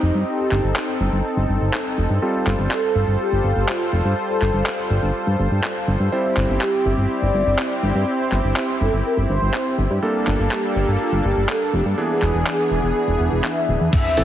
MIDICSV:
0, 0, Header, 1, 7, 480
1, 0, Start_track
1, 0, Tempo, 487805
1, 266, Time_signature, 4, 2, 24, 8
1, 14012, End_track
2, 0, Start_track
2, 0, Title_t, "Analog polysynth"
2, 0, Program_c, 0, 90
2, 0, Note_on_c, 0, 63, 86
2, 267, Note_on_c, 0, 67, 101
2, 280, Note_off_c, 0, 63, 0
2, 1187, Note_off_c, 0, 67, 0
2, 2669, Note_on_c, 0, 69, 110
2, 3149, Note_on_c, 0, 67, 110
2, 3162, Note_off_c, 0, 69, 0
2, 3630, Note_on_c, 0, 65, 88
2, 3642, Note_off_c, 0, 67, 0
2, 4109, Note_on_c, 0, 69, 104
2, 4122, Note_off_c, 0, 65, 0
2, 5028, Note_off_c, 0, 69, 0
2, 6505, Note_on_c, 0, 67, 96
2, 6952, Note_off_c, 0, 67, 0
2, 6987, Note_on_c, 0, 74, 116
2, 7947, Note_on_c, 0, 72, 113
2, 7975, Note_off_c, 0, 74, 0
2, 8393, Note_off_c, 0, 72, 0
2, 8429, Note_on_c, 0, 72, 100
2, 8670, Note_on_c, 0, 69, 84
2, 8675, Note_off_c, 0, 72, 0
2, 8777, Note_off_c, 0, 69, 0
2, 8911, Note_on_c, 0, 70, 97
2, 9018, Note_off_c, 0, 70, 0
2, 9151, Note_on_c, 0, 72, 89
2, 9595, Note_off_c, 0, 72, 0
2, 10346, Note_on_c, 0, 67, 99
2, 10828, Note_on_c, 0, 65, 95
2, 10840, Note_off_c, 0, 67, 0
2, 11066, Note_on_c, 0, 67, 93
2, 11074, Note_off_c, 0, 65, 0
2, 11289, Note_off_c, 0, 67, 0
2, 11307, Note_on_c, 0, 69, 101
2, 11546, Note_on_c, 0, 67, 94
2, 11553, Note_off_c, 0, 69, 0
2, 11654, Note_off_c, 0, 67, 0
2, 11785, Note_on_c, 0, 68, 112
2, 13186, Note_off_c, 0, 68, 0
2, 13226, Note_on_c, 0, 76, 108
2, 13672, Note_off_c, 0, 76, 0
2, 13705, Note_on_c, 0, 76, 126
2, 14012, Note_off_c, 0, 76, 0
2, 14012, End_track
3, 0, Start_track
3, 0, Title_t, "Analog synth pad"
3, 0, Program_c, 1, 89
3, 0, Note_on_c, 1, 60, 80
3, 0, Note_on_c, 1, 63, 70
3, 0, Note_on_c, 1, 67, 87
3, 248, Note_off_c, 1, 67, 0
3, 266, Note_on_c, 1, 69, 86
3, 2148, Note_off_c, 1, 60, 0
3, 2148, Note_off_c, 1, 63, 0
3, 2185, Note_on_c, 1, 55, 83
3, 2186, Note_on_c, 1, 65, 78
3, 2187, Note_on_c, 1, 72, 89
3, 5986, Note_off_c, 1, 69, 0
3, 5987, Note_off_c, 1, 55, 0
3, 5987, Note_off_c, 1, 65, 0
3, 5988, Note_off_c, 1, 72, 0
3, 6026, Note_on_c, 1, 60, 83
3, 6026, Note_on_c, 1, 64, 76
3, 6026, Note_on_c, 1, 67, 92
3, 9827, Note_off_c, 1, 60, 0
3, 9827, Note_off_c, 1, 64, 0
3, 9827, Note_off_c, 1, 67, 0
3, 9863, Note_on_c, 1, 55, 84
3, 9864, Note_on_c, 1, 62, 75
3, 9865, Note_on_c, 1, 58, 89
3, 9865, Note_on_c, 1, 69, 77
3, 11765, Note_off_c, 1, 55, 0
3, 11766, Note_off_c, 1, 58, 0
3, 11766, Note_off_c, 1, 69, 0
3, 11788, Note_on_c, 1, 59, 75
3, 11789, Note_on_c, 1, 52, 83
3, 11789, Note_on_c, 1, 68, 91
3, 13667, Note_off_c, 1, 62, 0
3, 13688, Note_off_c, 1, 52, 0
3, 13688, Note_off_c, 1, 59, 0
3, 13688, Note_off_c, 1, 68, 0
3, 13707, Note_on_c, 1, 64, 82
3, 13707, Note_on_c, 1, 69, 93
3, 13708, Note_on_c, 1, 60, 90
3, 14012, Note_off_c, 1, 60, 0
3, 14012, Note_off_c, 1, 64, 0
3, 14012, Note_off_c, 1, 69, 0
3, 14012, End_track
4, 0, Start_track
4, 0, Title_t, "Electric grand piano"
4, 0, Program_c, 2, 2
4, 0, Note_on_c, 2, 55, 67
4, 0, Note_on_c, 2, 60, 62
4, 0, Note_on_c, 2, 63, 65
4, 0, Note_on_c, 2, 72, 76
4, 2156, Note_off_c, 2, 55, 0
4, 2156, Note_off_c, 2, 60, 0
4, 2156, Note_off_c, 2, 63, 0
4, 2156, Note_off_c, 2, 72, 0
4, 2186, Note_on_c, 2, 60, 64
4, 2186, Note_on_c, 2, 69, 75
4, 2187, Note_on_c, 2, 55, 71
4, 2187, Note_on_c, 2, 65, 64
4, 5997, Note_off_c, 2, 60, 0
4, 5997, Note_off_c, 2, 65, 0
4, 5997, Note_off_c, 2, 69, 0
4, 5998, Note_off_c, 2, 55, 0
4, 6025, Note_on_c, 2, 55, 68
4, 6025, Note_on_c, 2, 60, 64
4, 6025, Note_on_c, 2, 64, 63
4, 6025, Note_on_c, 2, 72, 79
4, 9836, Note_off_c, 2, 64, 0
4, 9837, Note_off_c, 2, 55, 0
4, 9837, Note_off_c, 2, 60, 0
4, 9837, Note_off_c, 2, 72, 0
4, 9864, Note_on_c, 2, 55, 73
4, 9864, Note_on_c, 2, 62, 65
4, 9864, Note_on_c, 2, 69, 77
4, 9865, Note_on_c, 2, 58, 66
4, 11756, Note_off_c, 2, 55, 0
4, 11756, Note_off_c, 2, 58, 0
4, 11756, Note_off_c, 2, 62, 0
4, 11756, Note_off_c, 2, 69, 0
4, 11785, Note_on_c, 2, 62, 67
4, 11785, Note_on_c, 2, 68, 77
4, 11786, Note_on_c, 2, 52, 72
4, 11786, Note_on_c, 2, 59, 67
4, 13677, Note_off_c, 2, 52, 0
4, 13677, Note_off_c, 2, 59, 0
4, 13677, Note_off_c, 2, 62, 0
4, 13677, Note_off_c, 2, 68, 0
4, 13945, Note_on_c, 2, 57, 86
4, 13945, Note_on_c, 2, 60, 91
4, 13946, Note_on_c, 2, 52, 97
4, 13946, Note_on_c, 2, 69, 106
4, 14012, Note_off_c, 2, 52, 0
4, 14012, Note_off_c, 2, 57, 0
4, 14012, Note_off_c, 2, 60, 0
4, 14012, Note_off_c, 2, 69, 0
4, 14012, End_track
5, 0, Start_track
5, 0, Title_t, "Analog synth bass"
5, 0, Program_c, 3, 38
5, 25, Note_on_c, 3, 29, 85
5, 112, Note_off_c, 3, 29, 0
5, 146, Note_on_c, 3, 43, 80
5, 233, Note_off_c, 3, 43, 0
5, 504, Note_on_c, 3, 31, 88
5, 592, Note_off_c, 3, 31, 0
5, 625, Note_on_c, 3, 31, 73
5, 713, Note_off_c, 3, 31, 0
5, 985, Note_on_c, 3, 31, 88
5, 1073, Note_off_c, 3, 31, 0
5, 1107, Note_on_c, 3, 31, 81
5, 1193, Note_off_c, 3, 31, 0
5, 1347, Note_on_c, 3, 31, 75
5, 1434, Note_off_c, 3, 31, 0
5, 1466, Note_on_c, 3, 31, 88
5, 1553, Note_off_c, 3, 31, 0
5, 1586, Note_on_c, 3, 31, 76
5, 1673, Note_off_c, 3, 31, 0
5, 1946, Note_on_c, 3, 29, 89
5, 2033, Note_off_c, 3, 29, 0
5, 2066, Note_on_c, 3, 43, 83
5, 2153, Note_off_c, 3, 43, 0
5, 2425, Note_on_c, 3, 31, 94
5, 2513, Note_off_c, 3, 31, 0
5, 2545, Note_on_c, 3, 31, 75
5, 2632, Note_off_c, 3, 31, 0
5, 2905, Note_on_c, 3, 31, 89
5, 2993, Note_off_c, 3, 31, 0
5, 3026, Note_on_c, 3, 31, 81
5, 3113, Note_off_c, 3, 31, 0
5, 3266, Note_on_c, 3, 31, 74
5, 3353, Note_off_c, 3, 31, 0
5, 3385, Note_on_c, 3, 31, 82
5, 3473, Note_off_c, 3, 31, 0
5, 3505, Note_on_c, 3, 31, 76
5, 3593, Note_off_c, 3, 31, 0
5, 3864, Note_on_c, 3, 29, 90
5, 3952, Note_off_c, 3, 29, 0
5, 3985, Note_on_c, 3, 43, 79
5, 4072, Note_off_c, 3, 43, 0
5, 4345, Note_on_c, 3, 31, 91
5, 4432, Note_off_c, 3, 31, 0
5, 4465, Note_on_c, 3, 31, 77
5, 4552, Note_off_c, 3, 31, 0
5, 4825, Note_on_c, 3, 31, 92
5, 4913, Note_off_c, 3, 31, 0
5, 4945, Note_on_c, 3, 31, 77
5, 5033, Note_off_c, 3, 31, 0
5, 5185, Note_on_c, 3, 43, 74
5, 5273, Note_off_c, 3, 43, 0
5, 5306, Note_on_c, 3, 31, 86
5, 5393, Note_off_c, 3, 31, 0
5, 5426, Note_on_c, 3, 43, 78
5, 5513, Note_off_c, 3, 43, 0
5, 5784, Note_on_c, 3, 31, 90
5, 5872, Note_off_c, 3, 31, 0
5, 5903, Note_on_c, 3, 43, 82
5, 5992, Note_off_c, 3, 43, 0
5, 6264, Note_on_c, 3, 31, 92
5, 6352, Note_off_c, 3, 31, 0
5, 6384, Note_on_c, 3, 31, 77
5, 6472, Note_off_c, 3, 31, 0
5, 6744, Note_on_c, 3, 31, 88
5, 6832, Note_off_c, 3, 31, 0
5, 6864, Note_on_c, 3, 31, 77
5, 6952, Note_off_c, 3, 31, 0
5, 7105, Note_on_c, 3, 31, 74
5, 7193, Note_off_c, 3, 31, 0
5, 7224, Note_on_c, 3, 31, 86
5, 7312, Note_off_c, 3, 31, 0
5, 7344, Note_on_c, 3, 31, 79
5, 7432, Note_off_c, 3, 31, 0
5, 7704, Note_on_c, 3, 31, 90
5, 7792, Note_off_c, 3, 31, 0
5, 7825, Note_on_c, 3, 43, 82
5, 7913, Note_off_c, 3, 43, 0
5, 8185, Note_on_c, 3, 31, 96
5, 8272, Note_off_c, 3, 31, 0
5, 8305, Note_on_c, 3, 31, 76
5, 8393, Note_off_c, 3, 31, 0
5, 8666, Note_on_c, 3, 31, 88
5, 8753, Note_off_c, 3, 31, 0
5, 8785, Note_on_c, 3, 31, 76
5, 8873, Note_off_c, 3, 31, 0
5, 9025, Note_on_c, 3, 31, 79
5, 9112, Note_off_c, 3, 31, 0
5, 9145, Note_on_c, 3, 31, 88
5, 9233, Note_off_c, 3, 31, 0
5, 9265, Note_on_c, 3, 31, 81
5, 9353, Note_off_c, 3, 31, 0
5, 9625, Note_on_c, 3, 31, 91
5, 9712, Note_off_c, 3, 31, 0
5, 9746, Note_on_c, 3, 43, 82
5, 9833, Note_off_c, 3, 43, 0
5, 10106, Note_on_c, 3, 31, 94
5, 10193, Note_off_c, 3, 31, 0
5, 10226, Note_on_c, 3, 31, 77
5, 10313, Note_off_c, 3, 31, 0
5, 10585, Note_on_c, 3, 31, 87
5, 10673, Note_off_c, 3, 31, 0
5, 10706, Note_on_c, 3, 31, 78
5, 10793, Note_off_c, 3, 31, 0
5, 10944, Note_on_c, 3, 31, 77
5, 11032, Note_off_c, 3, 31, 0
5, 11065, Note_on_c, 3, 31, 85
5, 11153, Note_off_c, 3, 31, 0
5, 11185, Note_on_c, 3, 31, 78
5, 11273, Note_off_c, 3, 31, 0
5, 11544, Note_on_c, 3, 29, 91
5, 11632, Note_off_c, 3, 29, 0
5, 11665, Note_on_c, 3, 43, 81
5, 11752, Note_off_c, 3, 43, 0
5, 12024, Note_on_c, 3, 28, 92
5, 12112, Note_off_c, 3, 28, 0
5, 12145, Note_on_c, 3, 28, 73
5, 12232, Note_off_c, 3, 28, 0
5, 12506, Note_on_c, 3, 28, 86
5, 12593, Note_off_c, 3, 28, 0
5, 12625, Note_on_c, 3, 28, 77
5, 12713, Note_off_c, 3, 28, 0
5, 12865, Note_on_c, 3, 28, 73
5, 12953, Note_off_c, 3, 28, 0
5, 12985, Note_on_c, 3, 28, 87
5, 13073, Note_off_c, 3, 28, 0
5, 13105, Note_on_c, 3, 28, 79
5, 13192, Note_off_c, 3, 28, 0
5, 13465, Note_on_c, 3, 26, 90
5, 13553, Note_off_c, 3, 26, 0
5, 13587, Note_on_c, 3, 40, 83
5, 13674, Note_off_c, 3, 40, 0
5, 13947, Note_on_c, 3, 33, 98
5, 14012, Note_off_c, 3, 33, 0
5, 14012, End_track
6, 0, Start_track
6, 0, Title_t, "Sub drop"
6, 0, Program_c, 4, 103
6, 13705, Note_on_c, 4, 60, 77
6, 14012, Note_off_c, 4, 60, 0
6, 14012, End_track
7, 0, Start_track
7, 0, Title_t, "Drums"
7, 506, Note_on_c, 9, 39, 50
7, 605, Note_off_c, 9, 39, 0
7, 746, Note_on_c, 9, 39, 109
7, 845, Note_off_c, 9, 39, 0
7, 1707, Note_on_c, 9, 39, 115
7, 1806, Note_off_c, 9, 39, 0
7, 2428, Note_on_c, 9, 39, 46
7, 2526, Note_off_c, 9, 39, 0
7, 2667, Note_on_c, 9, 39, 115
7, 2766, Note_off_c, 9, 39, 0
7, 3627, Note_on_c, 9, 39, 116
7, 3725, Note_off_c, 9, 39, 0
7, 4347, Note_on_c, 9, 39, 47
7, 4445, Note_off_c, 9, 39, 0
7, 4586, Note_on_c, 9, 39, 115
7, 4684, Note_off_c, 9, 39, 0
7, 5546, Note_on_c, 9, 39, 114
7, 5644, Note_off_c, 9, 39, 0
7, 6266, Note_on_c, 9, 39, 44
7, 6364, Note_off_c, 9, 39, 0
7, 6506, Note_on_c, 9, 39, 112
7, 6604, Note_off_c, 9, 39, 0
7, 7465, Note_on_c, 9, 39, 111
7, 7564, Note_off_c, 9, 39, 0
7, 8186, Note_on_c, 9, 39, 46
7, 8284, Note_off_c, 9, 39, 0
7, 8425, Note_on_c, 9, 39, 101
7, 8523, Note_off_c, 9, 39, 0
7, 9385, Note_on_c, 9, 39, 112
7, 9484, Note_off_c, 9, 39, 0
7, 10106, Note_on_c, 9, 39, 47
7, 10204, Note_off_c, 9, 39, 0
7, 10345, Note_on_c, 9, 39, 102
7, 10443, Note_off_c, 9, 39, 0
7, 11306, Note_on_c, 9, 39, 105
7, 11404, Note_off_c, 9, 39, 0
7, 12025, Note_on_c, 9, 39, 47
7, 12123, Note_off_c, 9, 39, 0
7, 12266, Note_on_c, 9, 39, 106
7, 12364, Note_off_c, 9, 39, 0
7, 13226, Note_on_c, 9, 39, 108
7, 13324, Note_off_c, 9, 39, 0
7, 13706, Note_on_c, 9, 36, 122
7, 13706, Note_on_c, 9, 42, 95
7, 13706, Note_on_c, 9, 49, 105
7, 13804, Note_off_c, 9, 36, 0
7, 13805, Note_off_c, 9, 42, 0
7, 13805, Note_off_c, 9, 49, 0
7, 13826, Note_on_c, 9, 42, 42
7, 13924, Note_off_c, 9, 42, 0
7, 13945, Note_on_c, 9, 46, 103
7, 14012, Note_off_c, 9, 46, 0
7, 14012, End_track
0, 0, End_of_file